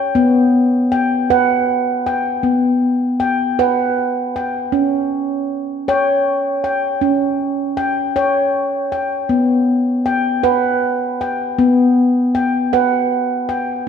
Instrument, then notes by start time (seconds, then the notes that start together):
handpan
Already playing: C#4 G5
0.15 B3
0.92 G5
1.30 B4 F#5
2.06 G5
2.43 B3
3.20 G5
3.59 B4 F#5
4.36 G5
4.72 C#4
5.88 C#5 G5
6.64 G5
7.01 C#4
7.77 G5
8.16 C#5 G5
8.92 G5
9.29 B3
10.06 G5
10.43 B4 F#5
11.21 G5
11.59 B3
12.35 G5
12.73 B4 F#5
13.49 G5